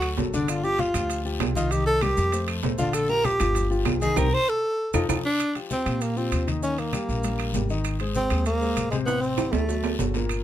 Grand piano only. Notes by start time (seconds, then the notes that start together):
Already playing: F#3 F#4 A4
0.18 F#3 F#4 A4
0.34 D3 D4 D5
0.63 F3 F4 G4
0.95 F3 F4 G4
1.25 F3 F4 G4
1.56 D#3 D#4 D#5
1.71 D#3 D#4 D#5
2.02 G3 G4 A#4
2.33 A3 A4 C5
2.64 A3 A4 C5
2.79 D3 D4 D5
3.09 F3 F4 G4
3.40 F3 F4 G4
3.70 F3 F4 G4
4.02 D#3 D#4 D#5
4.17 C4 D#4 G4
4.94 D#4 F4 A4
5.09 D#4 F4 A4
5.55 F3 F4 G4
5.85 F3 F4 G4
6.16 F3 F4 G4
6.47 D#3 D#4 D#5
6.62 D#3 D#4 D#5
6.93 G3 G4 A#4
7.24 G3 G4 A#4
7.54 G3 G4 A#4
7.70 D#3 D#4 D#5
8.01 G#3 G#4 C5
8.31 G#3 G#4 C5
8.61 G#3 G#4 C5
8.92 C3 C4 C5
9.07 C3 C4 C5
9.38 E3 E4 G4
9.69 F#3 F#4 A4
10.00 F#3 F#4 A4
10.16 A#2 A#3 A#4